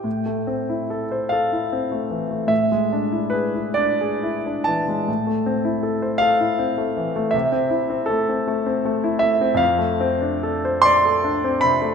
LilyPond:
\new Staff \with { instrumentName = "Grand piano" } { \time 6/8 \key a \minor \tempo 4. = 51 << { g''4. f''4. | e''4 b'8 d''4 a''8~ | a''4. f''4. | e''4 a'8 r4 e''8 |
\key d \dorian f''4. c'''4 b''8 | } \\ { a,16 a16 c'16 e'16 a'16 c''16 a'16 e'16 c'16 a16 e16 a16 | a,16 gis16 d'16 e'16 gis'16 e'16 d'16 gis'16 e'16 d'16 e16 gis16 | a,16 a16 c'16 e'16 a'16 c''16 a'16 e'16 c'16 a16 e16 a16 | c16 c'16 e'16 c'16 a16 c'16 a16 c'16 a16 e'16 a16 c'16 |
f,16 a16 c'16 d'16 a'16 c''16 d''16 a'16 d'16 c'16 c16 a16 | } >> }